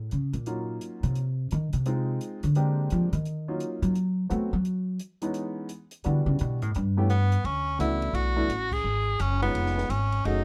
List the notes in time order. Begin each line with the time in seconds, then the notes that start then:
0.11 C#3, closed hi-hat
0.33 A#2, closed hi-hat
0.46 F#3 A#3 C#4 D#4 F4, closed hi-hat
0.81 closed hi-hat
1.03 C3, closed hi-hat
1.16 closed hi-hat
1.51 D#3, closed hi-hat
1.73 C3, closed hi-hat
1.86 G#3 C4 D#4 F4, closed hi-hat
2.21 closed hi-hat
2.43 D3, closed hi-hat
2.55 G#3 A#3 C4 D4 G4, closed hi-hat
2.90 F3, closed hi-hat
3.13 D#3, closed hi-hat
3.25 closed hi-hat
3.48 F#3 A#3 C#4 D#4 F4
3.60 closed hi-hat
3.82 F#3, closed hi-hat
3.95 closed hi-hat
4.29 F#3 A3 B3 C4 F#4, closed hi-hat
4.53 F#3
4.65 closed hi-hat
5.00 closed hi-hat
5.22 E3 G#3 B3 C#4 D#4, closed hi-hat
5.34 closed hi-hat
5.69 closed hi-hat
5.91 closed hi-hat
6.04 D3 E3 G3 B3 D4 F#4, closed hi-hat
6.26 C#3
6.39 B2, closed hi-hat
6.62 A2, closed hi-hat
6.75 G2, closed hi-hat
6.97 E3 A3 B3 C#4 G4
7.10 B3, closed hi-hat
7.32 closed hi-hat
7.44 D2 C#4, ride
7.79 C#2 E3 A3 B3 D4 E4 F#4, hi-hat pedal, ride
8.02 ride
8.13 B1 F#4, ride
8.36 E3 A3 B3 D4 E4
8.49 A1, hi-hat pedal, ride
8.72 G#4, kick, crash
8.84 G#1
9.20 F#1 C#4, hi-hat pedal, ride
9.42 G#3 B3 C#4 D#4 F4, ride
9.55 F1, ride
9.66 snare
9.78 snare
9.89 G#1 C#4, hi-hat pedal, ride
10.12 ride
10.25 F#1 F#3 A3 C#4 D#4 F#4 G#4, ride